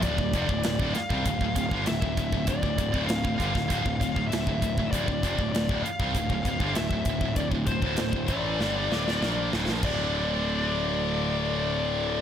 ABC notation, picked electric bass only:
X:1
M:4/4
L:1/16
Q:1/4=98
K:Dm
V:1 name="Picked electric bass" clef=bass
D,,, D,,, F,,, D,,, D,,, D,,, z C,, D,,, D,,, D,,, G,,, D,,, D,,, D,,, D,,, | D,,, D,,, D,,, D,,, D,,, D,,, G,,, D,,, D,,, D,,, D,,, D,,, D,,, D,,, D,,, D,,, | D,,, D,,, F,,, D,,, D,,, D,,, z C,, D,,, D,,, D,,, G,,, D,,, D,,, D,,, D,,, | D,,, D,,, D,,, D,,, D,,, D,,, A,,,2 G,,,2 D,,,2 B,,,2 D,,, B,,, |
D,,,16 |]